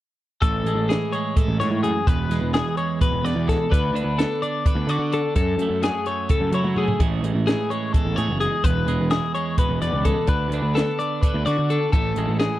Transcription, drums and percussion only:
0.42 kick loud
0.42 closed hi-hat medium
0.66 closed hi-hat medium
0.90 snare medium
0.90 closed hi-hat medium
1.13 closed hi-hat medium
1.37 kick loud
1.37 closed hi-hat medium
1.61 snare soft
1.61 closed hi-hat medium
1.84 closed hi-hat medium
2.07 kick loud
2.07 closed hi-hat medium
2.31 snare soft
2.31 closed hi-hat medium
2.54 snare loud
2.54 closed hi-hat medium
2.77 closed hi-hat medium
3.01 kick loud
3.01 closed hi-hat medium
3.26 snare soft
3.26 closed hi-hat medium
3.49 kick medium
3.49 snare soft
3.49 closed hi-hat medium
3.72 kick loud
3.72 closed hi-hat medium
3.96 closed hi-hat medium
4.19 snare medium
4.19 closed hi-hat medium
4.43 closed hi-hat medium
4.66 kick loud
4.66 closed hi-hat medium
4.89 closed hi-hat medium
5.12 closed hi-hat medium
5.36 kick loud
5.36 closed hi-hat medium
5.59 closed hi-hat medium
5.83 snare medium
5.83 closed hi-hat medium
6.06 closed hi-hat medium
6.29 kick loud
6.29 closed hi-hat medium
6.52 closed hi-hat medium
6.65 high tom medium
6.76 mid tom medium
6.88 floor tom medium
7.00 kick loud
7.00 closed hi-hat medium
7.24 closed hi-hat medium
7.48 snare medium
7.48 closed hi-hat medium
7.71 closed hi-hat medium
7.94 kick loud
7.94 closed hi-hat medium
8.18 closed hi-hat medium
8.41 closed hi-hat medium
8.64 kick medium
8.64 closed hi-hat medium
8.88 closed hi-hat medium
9.11 snare loud
9.11 closed hi-hat medium
9.35 closed hi-hat medium
9.58 kick loud
9.58 closed hi-hat medium
9.82 closed hi-hat medium
10.05 kick medium
10.05 closed hi-hat medium
10.27 kick loud
10.27 closed hi-hat medium
10.52 closed hi-hat medium
10.76 snare medium
10.76 closed hi-hat medium
10.99 closed hi-hat medium
11.23 kick loud
11.23 closed hi-hat medium
11.47 snare soft
11.47 closed hi-hat medium
11.70 closed hi-hat medium
11.93 kick loud
11.93 closed hi-hat medium
12.16 closed hi-hat medium
12.40 snare loud
12.40 closed hi-hat medium

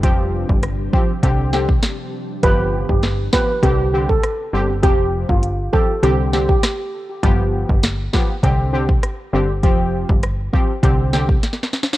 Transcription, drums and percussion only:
0.03 kick loud
0.03 closed hi-hat medium
0.49 kick loud
0.63 cross-stick medium
0.63 closed hi-hat medium
0.93 kick loud
1.23 kick medium
1.23 closed hi-hat medium
1.53 snare medium
1.69 kick loud
1.83 snare loud
1.83 closed hi-hat medium
2.43 kick loud
2.43 closed hi-hat medium
2.89 kick medium
3.03 snare loud
3.03 closed hi-hat medium
3.33 kick loud
3.33 snare loud
3.63 kick medium
3.63 closed hi-hat medium
4.09 kick loud
4.23 cross-stick medium
4.23 closed hi-hat medium
4.83 kick loud
4.83 closed hi-hat medium
5.29 kick medium
5.43 closed hi-hat medium
5.73 kick loud
6.03 closed hi-hat medium
6.33 snare medium
6.49 kick medium
6.63 cross-stick medium
6.63 snare loud
6.63 closed hi-hat medium
7.23 kick loud
7.23 closed hi-hat medium
7.69 kick loud
7.83 snare loud
7.83 closed hi-hat medium
8.13 kick loud
8.13 snare loud
8.43 kick medium
8.43 closed hi-hat medium
8.89 kick loud
9.03 cross-stick medium
9.03 closed hi-hat medium
9.63 kick loud
9.63 closed hi-hat medium
10.09 kick loud
10.23 cross-stick medium
10.23 closed hi-hat medium
10.53 kick loud
10.83 kick loud
10.83 closed hi-hat medium
11.13 snare medium
11.29 kick loud
11.43 snare medium
11.43 closed hi-hat medium
11.53 snare medium
11.63 snare medium
11.73 snare medium
11.83 snare loud
11.93 snare loud

